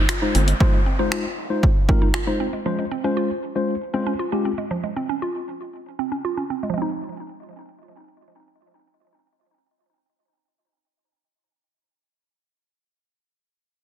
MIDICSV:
0, 0, Header, 1, 6, 480
1, 0, Start_track
1, 0, Key_signature, -4, "minor"
1, 0, Tempo, 512821
1, 563, Time_signature, 4, 2, 24, 8
1, 12946, End_track
2, 0, Start_track
2, 0, Title_t, "Tine electric piano"
2, 0, Program_c, 0, 4
2, 206, Note_on_c, 0, 56, 81
2, 207, Note_on_c, 0, 63, 77
2, 209, Note_on_c, 0, 65, 77
2, 211, Note_on_c, 0, 72, 91
2, 380, Note_off_c, 0, 56, 0
2, 380, Note_off_c, 0, 63, 0
2, 381, Note_off_c, 0, 65, 0
2, 382, Note_off_c, 0, 72, 0
2, 564, Note_on_c, 0, 56, 85
2, 565, Note_on_c, 0, 63, 77
2, 567, Note_on_c, 0, 65, 77
2, 569, Note_on_c, 0, 72, 91
2, 739, Note_off_c, 0, 56, 0
2, 739, Note_off_c, 0, 63, 0
2, 740, Note_off_c, 0, 65, 0
2, 741, Note_off_c, 0, 72, 0
2, 926, Note_on_c, 0, 56, 87
2, 927, Note_on_c, 0, 63, 79
2, 927, Note_on_c, 0, 65, 80
2, 929, Note_on_c, 0, 72, 97
2, 1158, Note_off_c, 0, 56, 0
2, 1158, Note_off_c, 0, 63, 0
2, 1159, Note_off_c, 0, 65, 0
2, 1160, Note_off_c, 0, 72, 0
2, 1400, Note_on_c, 0, 56, 79
2, 1403, Note_on_c, 0, 63, 72
2, 1404, Note_on_c, 0, 65, 74
2, 1406, Note_on_c, 0, 72, 90
2, 1577, Note_off_c, 0, 56, 0
2, 1578, Note_off_c, 0, 63, 0
2, 1579, Note_off_c, 0, 65, 0
2, 1580, Note_off_c, 0, 72, 0
2, 1764, Note_on_c, 0, 56, 79
2, 1765, Note_on_c, 0, 63, 75
2, 1765, Note_on_c, 0, 65, 76
2, 1768, Note_on_c, 0, 70, 88
2, 1939, Note_off_c, 0, 56, 0
2, 1939, Note_off_c, 0, 63, 0
2, 1939, Note_off_c, 0, 65, 0
2, 1941, Note_off_c, 0, 70, 0
2, 2123, Note_on_c, 0, 56, 83
2, 2125, Note_on_c, 0, 63, 74
2, 2126, Note_on_c, 0, 65, 74
2, 2127, Note_on_c, 0, 72, 94
2, 2298, Note_off_c, 0, 56, 0
2, 2299, Note_off_c, 0, 63, 0
2, 2300, Note_off_c, 0, 65, 0
2, 2300, Note_off_c, 0, 72, 0
2, 2482, Note_on_c, 0, 56, 82
2, 2485, Note_on_c, 0, 61, 76
2, 2486, Note_on_c, 0, 65, 73
2, 2489, Note_on_c, 0, 72, 92
2, 2658, Note_off_c, 0, 56, 0
2, 2659, Note_off_c, 0, 61, 0
2, 2660, Note_off_c, 0, 65, 0
2, 2661, Note_off_c, 0, 72, 0
2, 2845, Note_on_c, 0, 56, 84
2, 2845, Note_on_c, 0, 61, 73
2, 2847, Note_on_c, 0, 65, 79
2, 2849, Note_on_c, 0, 72, 94
2, 3078, Note_off_c, 0, 56, 0
2, 3078, Note_off_c, 0, 61, 0
2, 3079, Note_off_c, 0, 65, 0
2, 3079, Note_off_c, 0, 72, 0
2, 3325, Note_on_c, 0, 56, 81
2, 3327, Note_on_c, 0, 61, 73
2, 3328, Note_on_c, 0, 65, 72
2, 3330, Note_on_c, 0, 72, 86
2, 3499, Note_off_c, 0, 56, 0
2, 3500, Note_off_c, 0, 61, 0
2, 3501, Note_off_c, 0, 65, 0
2, 3502, Note_off_c, 0, 72, 0
2, 3683, Note_on_c, 0, 56, 80
2, 3684, Note_on_c, 0, 61, 73
2, 3686, Note_on_c, 0, 65, 75
2, 3688, Note_on_c, 0, 72, 91
2, 3858, Note_off_c, 0, 56, 0
2, 3859, Note_off_c, 0, 61, 0
2, 3860, Note_off_c, 0, 65, 0
2, 3861, Note_off_c, 0, 72, 0
2, 4044, Note_on_c, 0, 56, 81
2, 4045, Note_on_c, 0, 61, 76
2, 4047, Note_on_c, 0, 65, 77
2, 4049, Note_on_c, 0, 67, 88
2, 4219, Note_off_c, 0, 56, 0
2, 4219, Note_off_c, 0, 61, 0
2, 4220, Note_off_c, 0, 65, 0
2, 4221, Note_off_c, 0, 67, 0
2, 12946, End_track
3, 0, Start_track
3, 0, Title_t, "Synth arpeggio sound"
3, 0, Program_c, 1, 84
3, 86, Note_on_c, 1, 65, 89
3, 194, Note_off_c, 1, 65, 0
3, 207, Note_on_c, 1, 63, 79
3, 314, Note_off_c, 1, 63, 0
3, 327, Note_on_c, 1, 60, 83
3, 435, Note_off_c, 1, 60, 0
3, 447, Note_on_c, 1, 56, 78
3, 554, Note_off_c, 1, 56, 0
3, 568, Note_on_c, 1, 53, 93
3, 675, Note_off_c, 1, 53, 0
3, 687, Note_on_c, 1, 56, 71
3, 795, Note_off_c, 1, 56, 0
3, 807, Note_on_c, 1, 60, 80
3, 915, Note_off_c, 1, 60, 0
3, 928, Note_on_c, 1, 63, 76
3, 1035, Note_off_c, 1, 63, 0
3, 1048, Note_on_c, 1, 65, 91
3, 1155, Note_off_c, 1, 65, 0
3, 1767, Note_on_c, 1, 60, 80
3, 1875, Note_off_c, 1, 60, 0
3, 1888, Note_on_c, 1, 63, 76
3, 1995, Note_off_c, 1, 63, 0
3, 2007, Note_on_c, 1, 65, 90
3, 2115, Note_off_c, 1, 65, 0
3, 2128, Note_on_c, 1, 63, 78
3, 2235, Note_off_c, 1, 63, 0
3, 2246, Note_on_c, 1, 60, 82
3, 2354, Note_off_c, 1, 60, 0
3, 2368, Note_on_c, 1, 56, 72
3, 2475, Note_off_c, 1, 56, 0
3, 2488, Note_on_c, 1, 53, 89
3, 2595, Note_off_c, 1, 53, 0
3, 2608, Note_on_c, 1, 56, 70
3, 2715, Note_off_c, 1, 56, 0
3, 2728, Note_on_c, 1, 60, 78
3, 2835, Note_off_c, 1, 60, 0
3, 2848, Note_on_c, 1, 61, 76
3, 2955, Note_off_c, 1, 61, 0
3, 2966, Note_on_c, 1, 65, 90
3, 3074, Note_off_c, 1, 65, 0
3, 3685, Note_on_c, 1, 60, 81
3, 3793, Note_off_c, 1, 60, 0
3, 3804, Note_on_c, 1, 61, 81
3, 3913, Note_off_c, 1, 61, 0
3, 3925, Note_on_c, 1, 65, 90
3, 4034, Note_off_c, 1, 65, 0
3, 4045, Note_on_c, 1, 61, 76
3, 4154, Note_off_c, 1, 61, 0
3, 4167, Note_on_c, 1, 60, 83
3, 4275, Note_off_c, 1, 60, 0
3, 4286, Note_on_c, 1, 56, 74
3, 4394, Note_off_c, 1, 56, 0
3, 4407, Note_on_c, 1, 53, 92
3, 4515, Note_off_c, 1, 53, 0
3, 4526, Note_on_c, 1, 56, 73
3, 4634, Note_off_c, 1, 56, 0
3, 4647, Note_on_c, 1, 60, 81
3, 4755, Note_off_c, 1, 60, 0
3, 4767, Note_on_c, 1, 61, 77
3, 4875, Note_off_c, 1, 61, 0
3, 4887, Note_on_c, 1, 65, 91
3, 4995, Note_off_c, 1, 65, 0
3, 5606, Note_on_c, 1, 60, 78
3, 5714, Note_off_c, 1, 60, 0
3, 5725, Note_on_c, 1, 61, 79
3, 5834, Note_off_c, 1, 61, 0
3, 5846, Note_on_c, 1, 65, 88
3, 5954, Note_off_c, 1, 65, 0
3, 5965, Note_on_c, 1, 61, 75
3, 6074, Note_off_c, 1, 61, 0
3, 6085, Note_on_c, 1, 60, 80
3, 6194, Note_off_c, 1, 60, 0
3, 6205, Note_on_c, 1, 56, 74
3, 6267, Note_on_c, 1, 53, 83
3, 6294, Note_off_c, 1, 56, 0
3, 6306, Note_on_c, 1, 56, 78
3, 6342, Note_on_c, 1, 60, 73
3, 6381, Note_on_c, 1, 63, 90
3, 10840, Note_off_c, 1, 53, 0
3, 10879, Note_off_c, 1, 56, 0
3, 10915, Note_off_c, 1, 60, 0
3, 10953, Note_off_c, 1, 63, 0
3, 12946, End_track
4, 0, Start_track
4, 0, Title_t, "Analog synth bass"
4, 0, Program_c, 2, 38
4, 327, Note_on_c, 2, 31, 95
4, 499, Note_off_c, 2, 31, 0
4, 12946, End_track
5, 0, Start_track
5, 0, Title_t, "Downlifter"
5, 0, Program_c, 3, 103
5, 0, Note_on_c, 3, 60, 77
5, 2485, Note_off_c, 3, 60, 0
5, 12946, End_track
6, 0, Start_track
6, 0, Title_t, "Drums"
6, 83, Note_on_c, 9, 26, 104
6, 86, Note_on_c, 9, 42, 79
6, 177, Note_off_c, 9, 26, 0
6, 179, Note_off_c, 9, 42, 0
6, 327, Note_on_c, 9, 42, 68
6, 420, Note_off_c, 9, 42, 0
6, 447, Note_on_c, 9, 42, 48
6, 541, Note_off_c, 9, 42, 0
6, 566, Note_on_c, 9, 36, 122
6, 660, Note_off_c, 9, 36, 0
6, 1046, Note_on_c, 9, 26, 106
6, 1140, Note_off_c, 9, 26, 0
6, 1527, Note_on_c, 9, 36, 92
6, 1621, Note_off_c, 9, 36, 0
6, 1766, Note_on_c, 9, 36, 97
6, 1860, Note_off_c, 9, 36, 0
6, 2003, Note_on_c, 9, 26, 100
6, 2096, Note_off_c, 9, 26, 0
6, 12946, End_track
0, 0, End_of_file